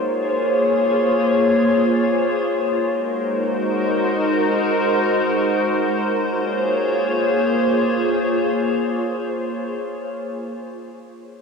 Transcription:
0, 0, Header, 1, 2, 480
1, 0, Start_track
1, 0, Key_signature, -5, "minor"
1, 0, Tempo, 500000
1, 10961, End_track
2, 0, Start_track
2, 0, Title_t, "Ambient pad"
2, 0, Program_c, 0, 92
2, 0, Note_on_c, 0, 58, 82
2, 0, Note_on_c, 0, 65, 70
2, 0, Note_on_c, 0, 68, 74
2, 0, Note_on_c, 0, 72, 77
2, 0, Note_on_c, 0, 73, 88
2, 2329, Note_off_c, 0, 72, 0
2, 2336, Note_off_c, 0, 58, 0
2, 2336, Note_off_c, 0, 65, 0
2, 2336, Note_off_c, 0, 68, 0
2, 2336, Note_off_c, 0, 73, 0
2, 2368, Note_on_c, 0, 56, 79
2, 2369, Note_on_c, 0, 66, 70
2, 2369, Note_on_c, 0, 72, 86
2, 2370, Note_on_c, 0, 70, 73
2, 2371, Note_on_c, 0, 63, 76
2, 5558, Note_off_c, 0, 56, 0
2, 5558, Note_off_c, 0, 66, 0
2, 5558, Note_off_c, 0, 72, 0
2, 5559, Note_off_c, 0, 63, 0
2, 5559, Note_off_c, 0, 70, 0
2, 5586, Note_on_c, 0, 58, 80
2, 5586, Note_on_c, 0, 73, 87
2, 5587, Note_on_c, 0, 65, 73
2, 5587, Note_on_c, 0, 68, 72
2, 5588, Note_on_c, 0, 72, 75
2, 9540, Note_off_c, 0, 58, 0
2, 9540, Note_off_c, 0, 65, 0
2, 9540, Note_off_c, 0, 68, 0
2, 9540, Note_off_c, 0, 73, 0
2, 9541, Note_off_c, 0, 72, 0
2, 10961, End_track
0, 0, End_of_file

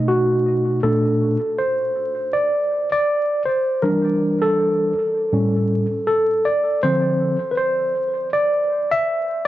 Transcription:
0, 0, Header, 1, 2, 480
1, 0, Start_track
1, 0, Tempo, 750000
1, 535, Time_signature, 4, 2, 24, 8
1, 6064, End_track
2, 0, Start_track
2, 0, Title_t, "Tine electric piano"
2, 0, Program_c, 0, 4
2, 0, Note_on_c, 0, 47, 55
2, 0, Note_on_c, 0, 57, 47
2, 0, Note_on_c, 0, 63, 56
2, 0, Note_on_c, 0, 75, 91
2, 52, Note_on_c, 0, 66, 87
2, 69, Note_off_c, 0, 75, 0
2, 508, Note_off_c, 0, 66, 0
2, 509, Note_off_c, 0, 47, 0
2, 511, Note_off_c, 0, 57, 0
2, 514, Note_off_c, 0, 63, 0
2, 532, Note_on_c, 0, 69, 84
2, 534, Note_on_c, 0, 46, 47
2, 537, Note_on_c, 0, 57, 44
2, 541, Note_on_c, 0, 62, 55
2, 868, Note_off_c, 0, 46, 0
2, 870, Note_off_c, 0, 57, 0
2, 871, Note_off_c, 0, 62, 0
2, 1015, Note_on_c, 0, 72, 83
2, 1028, Note_off_c, 0, 69, 0
2, 1493, Note_on_c, 0, 74, 86
2, 1509, Note_off_c, 0, 72, 0
2, 1847, Note_off_c, 0, 74, 0
2, 1870, Note_on_c, 0, 74, 93
2, 2189, Note_off_c, 0, 74, 0
2, 2211, Note_on_c, 0, 72, 76
2, 2447, Note_on_c, 0, 70, 77
2, 2450, Note_on_c, 0, 52, 47
2, 2455, Note_on_c, 0, 55, 44
2, 2458, Note_on_c, 0, 62, 55
2, 2460, Note_off_c, 0, 72, 0
2, 2827, Note_on_c, 0, 69, 94
2, 2841, Note_off_c, 0, 70, 0
2, 3147, Note_off_c, 0, 52, 0
2, 3149, Note_off_c, 0, 55, 0
2, 3151, Note_off_c, 0, 62, 0
2, 3409, Note_on_c, 0, 45, 52
2, 3411, Note_on_c, 0, 55, 51
2, 3415, Note_on_c, 0, 61, 58
2, 3745, Note_off_c, 0, 45, 0
2, 3746, Note_off_c, 0, 55, 0
2, 3749, Note_off_c, 0, 61, 0
2, 3878, Note_off_c, 0, 69, 0
2, 3885, Note_on_c, 0, 69, 88
2, 4129, Note_on_c, 0, 74, 85
2, 4137, Note_off_c, 0, 69, 0
2, 4355, Note_off_c, 0, 74, 0
2, 4371, Note_on_c, 0, 72, 98
2, 4372, Note_on_c, 0, 50, 51
2, 4374, Note_on_c, 0, 53, 46
2, 4379, Note_on_c, 0, 60, 60
2, 4707, Note_off_c, 0, 50, 0
2, 4708, Note_off_c, 0, 53, 0
2, 4711, Note_off_c, 0, 60, 0
2, 4809, Note_on_c, 0, 71, 62
2, 4828, Note_off_c, 0, 72, 0
2, 4848, Note_on_c, 0, 72, 83
2, 4850, Note_off_c, 0, 71, 0
2, 5306, Note_off_c, 0, 72, 0
2, 5332, Note_on_c, 0, 74, 94
2, 5705, Note_on_c, 0, 76, 104
2, 5724, Note_off_c, 0, 74, 0
2, 6061, Note_off_c, 0, 76, 0
2, 6064, End_track
0, 0, End_of_file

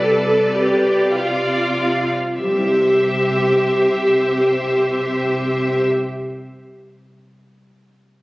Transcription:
0, 0, Header, 1, 7, 480
1, 0, Start_track
1, 0, Key_signature, 0, "major"
1, 0, Tempo, 1129944
1, 480, Tempo, 1239669
1, 963, Time_signature, 3, 2, 24, 8
1, 1440, Tempo, 1209677
1, 3272, End_track
2, 0, Start_track
2, 0, Title_t, "Violin section"
2, 0, Program_c, 0, 48
2, 0, Note_on_c, 0, 74, 40
2, 462, Note_off_c, 0, 74, 0
2, 480, Note_on_c, 0, 77, 35
2, 864, Note_off_c, 0, 77, 0
2, 960, Note_on_c, 0, 76, 33
2, 2330, Note_off_c, 0, 76, 0
2, 3272, End_track
3, 0, Start_track
3, 0, Title_t, "Violin section"
3, 0, Program_c, 1, 48
3, 0, Note_on_c, 1, 71, 43
3, 474, Note_on_c, 1, 74, 36
3, 478, Note_off_c, 1, 71, 0
3, 861, Note_off_c, 1, 74, 0
3, 958, Note_on_c, 1, 72, 34
3, 2328, Note_off_c, 1, 72, 0
3, 3272, End_track
4, 0, Start_track
4, 0, Title_t, "Viola section"
4, 0, Program_c, 2, 48
4, 0, Note_on_c, 2, 69, 42
4, 235, Note_on_c, 2, 67, 38
4, 236, Note_off_c, 2, 69, 0
4, 479, Note_off_c, 2, 67, 0
4, 479, Note_on_c, 2, 65, 32
4, 864, Note_off_c, 2, 65, 0
4, 961, Note_on_c, 2, 67, 37
4, 2332, Note_off_c, 2, 67, 0
4, 3272, End_track
5, 0, Start_track
5, 0, Title_t, "Harp"
5, 0, Program_c, 3, 46
5, 0, Note_on_c, 3, 48, 38
5, 0, Note_on_c, 3, 55, 30
5, 0, Note_on_c, 3, 65, 31
5, 234, Note_on_c, 3, 71, 32
5, 470, Note_off_c, 3, 65, 0
5, 475, Note_on_c, 3, 65, 27
5, 715, Note_on_c, 3, 60, 23
5, 953, Note_off_c, 3, 48, 0
5, 957, Note_on_c, 3, 48, 24
5, 980, Note_off_c, 3, 55, 0
5, 980, Note_off_c, 3, 65, 0
5, 981, Note_off_c, 3, 71, 0
5, 985, Note_on_c, 3, 55, 25
5, 1007, Note_off_c, 3, 60, 0
5, 1012, Note_on_c, 3, 60, 26
5, 1040, Note_on_c, 3, 64, 24
5, 1065, Note_on_c, 3, 72, 25
5, 1095, Note_on_c, 3, 76, 26
5, 2384, Note_off_c, 3, 60, 0
5, 2389, Note_off_c, 3, 55, 0
5, 2412, Note_off_c, 3, 64, 0
5, 2439, Note_off_c, 3, 72, 0
5, 2469, Note_off_c, 3, 76, 0
5, 2493, Note_off_c, 3, 48, 0
5, 3272, End_track
6, 0, Start_track
6, 0, Title_t, "Cello section"
6, 0, Program_c, 4, 48
6, 0, Note_on_c, 4, 48, 50
6, 849, Note_off_c, 4, 48, 0
6, 964, Note_on_c, 4, 48, 33
6, 2334, Note_off_c, 4, 48, 0
6, 3272, End_track
7, 0, Start_track
7, 0, Title_t, "Double bass section"
7, 0, Program_c, 5, 48
7, 959, Note_on_c, 5, 36, 31
7, 2330, Note_off_c, 5, 36, 0
7, 3272, End_track
0, 0, End_of_file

